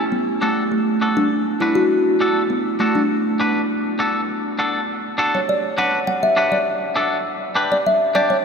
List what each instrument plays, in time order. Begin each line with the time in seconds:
0.12 kalimba B3
0.42 kalimba A3, clean electric guitar D4 F#4 A4
0.72 kalimba A3
1.01 clean electric guitar D4 F#4 A4
1.17 kalimba D4
1.60 clean electric guitar D4 F#4 B4, kalimba E4
1.75 kalimba F#4
2.21 clean electric guitar D4 F#4 A4
2.50 kalimba B3
2.79 kalimba A3, clean electric guitar D4 F#4 A4
2.95 kalimba D4
3.40 clean electric guitar D4 F#4 B4
3.99 clean electric guitar D4 F#4 A4
4.59 clean electric guitar D4 F#4 A4
5.18 clean electric guitar D4 F#4 A4
5.35 kalimba C#5
5.49 kalimba D5
5.78 clean electric guitar D4 F#4 B4, kalimba F#5
6.07 kalimba F#5
6.23 kalimba E5
6.37 clean electric guitar D4 F#4 B4
6.52 kalimba D5
6.96 clean electric guitar D4 F#4 A4
7.55 clean electric guitar D4 G4 B4
7.72 kalimba D5
7.86 kalimba E5
8.15 clean electric guitar D4 G4 D5, kalimba D5
8.30 kalimba C#5